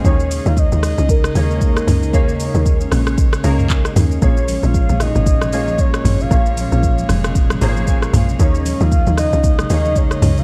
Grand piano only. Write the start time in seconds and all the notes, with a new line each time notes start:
Already playing: D#5 G#5
0.05 A#3 C#4 D#4 G#4 C#5
1.35 A#3 C#4 D#4 G#4 C#5
2.13 A#3 C#4 D#4 G#4 C#5
3.44 A#3 C#4 D#4 G#4 A#4
4.22 A#3 C#4 F4 G#4 C#5
5.53 A#3 C#4 F4 G#4 C#5
6.31 A#3 C#4 F4 G#4 C#5
7.61 A#3 C#4 F4 G#4 C5 A#5
7.69 C#5
7.88 G#5
8.14 F5
8.40 A#3 C#4 D#4 G#4 C#5
9.70 A#3 C#4 D#4 G#4 C#5